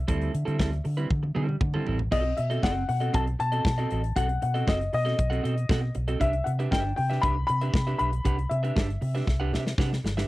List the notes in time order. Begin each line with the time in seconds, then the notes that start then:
Already playing: E5
0.08 D2 G3 C4 E4 A4, kick, closed hi-hat
0.21 closed hi-hat
0.33 D3, muted clean electric guitar stroke, closed hi-hat
0.45 D3 G3 C4 E4 A4, closed hi-hat
0.58 D2 G3 C4 E4 A4, kick, snare
0.72 muted clean electric guitar stroke, closed hi-hat
0.84 D3, muted clean electric guitar stroke, open hi-hat
0.97 G3 C4 E4 B4, closed hi-hat
1.10 D3, muted clean electric guitar stroke, kick, high tom
1.23 muted clean electric guitar stroke, high tom
1.35 D3 G3 C4 E4 A4, mid tom
1.48 muted clean electric guitar stroke, mid tom
1.61 D3, muted clean electric guitar stroke, kick, mid tom
1.74 G3 C4 E4 A4, mid tom
1.86 A1 G3 C4 E4 A4, floor tom
1.99 muted clean electric guitar stroke, floor tom
2.11 B1 C4 F#4 A4 D#5, kick, crash
2.25 muted clean electric guitar stroke
2.37 B2 E5, muted clean electric guitar stroke, closed hi-hat
2.50 C4 F#4 A4 D#5, closed hi-hat
2.63 F#1 C4 F#4 A4 D#5 F#5, kick, snare
2.76 muted clean electric guitar stroke
2.88 B2 F#5, muted clean electric guitar stroke, open hi-hat
3.00 C4 F#4 A4 D#5, closed hi-hat
3.13 B1 C4 F#4 A4 D#5 A5, kick, closed hi-hat
3.27 muted clean electric guitar stroke, closed hi-hat
3.39 B2 A5, muted clean electric guitar stroke, closed hi-hat
3.52 C4 F#4 A4 D#5, closed hi-hat
3.65 B2, kick, snare
3.78 C4 F#4 A4 D#5, closed hi-hat
3.91 A1 C4 F#4 A4 D#5, closed hi-hat
4.03 muted clean electric guitar stroke, closed hi-hat
4.16 B1 C4 F#4 A4 F#5, kick, closed hi-hat
4.29 muted clean electric guitar stroke, closed hi-hat
4.42 B2 F#5, muted clean electric guitar stroke, closed hi-hat
4.54 C4 F#4 A4 D#5, closed hi-hat
4.67 F#1 C4 F#4 A4 D#5, kick, snare
4.80 muted clean electric guitar stroke, closed hi-hat
4.93 B2 D#5, muted clean electric guitar stroke, open hi-hat
5.05 C4 F#4 A4 D#5, snare, closed hi-hat
5.17 B1, muted clean electric guitar stroke, kick, closed hi-hat
5.30 C4 F#4 A4 F#5, closed hi-hat
5.43 B2 C4 F#4 A4 D#5, closed hi-hat
5.56 muted clean electric guitar stroke, closed hi-hat
5.69 B2 C4 F#4 A4 F#5, kick, snare
5.82 muted clean electric guitar stroke
5.95 B1, muted clean electric guitar stroke, closed hi-hat
6.08 C4 F#4 A4 D#5, closed hi-hat
6.20 C2 D4 G4 B4 E5, kick, closed hi-hat
6.33 muted clean electric guitar stroke, closed hi-hat
6.44 C3 F#5, muted clean electric guitar stroke, closed hi-hat
6.59 D4 G4 B4 E5, closed hi-hat
6.71 G1 D4 G4 B4 E5 G5, kick, snare
6.85 muted clean electric guitar stroke
6.96 C3 G5, muted clean electric guitar stroke, open hi-hat
7.10 D4 G4 B4 E5, snare, closed hi-hat
7.21 C2 D4 G4 B4 E5 B5, kick, closed hi-hat
7.36 muted clean electric guitar stroke
7.47 C3 B5, muted clean electric guitar stroke, closed hi-hat
7.61 D4 G4 B4 E5, closed hi-hat
7.74 C3, muted clean electric guitar stroke, kick, snare
7.87 D4 G4 B4 E5, closed hi-hat
7.99 B1 D4 G4 B4 E5 B5, closed hi-hat
8.12 muted clean electric guitar stroke, closed hi-hat
8.25 C2 D4 G4 B4 F#5, kick, closed hi-hat
8.38 muted clean electric guitar stroke, closed hi-hat
8.50 C3 E5, muted clean electric guitar stroke, closed hi-hat
8.63 D4 G4 B4 E5, closed hi-hat
8.76 G1 D4 G4 B4 E5, kick, snare
8.89 muted clean electric guitar stroke, closed hi-hat
9.01 C3, muted clean electric guitar stroke, open hi-hat
9.15 D4 G4 B4 E5, snare, closed hi-hat
9.27 C2, muted clean electric guitar stroke, kick, snare
9.40 D4 G4 B4 F#5
9.53 C3 D4 G4 B4 E5, snare
9.67 snare
9.78 C3 D4 G4 B4 F#5, kick, snare
9.91 muted clean electric guitar stroke, snare
10.04 G1, muted clean electric guitar stroke, snare
10.17 D4 G4 B4 E5, snare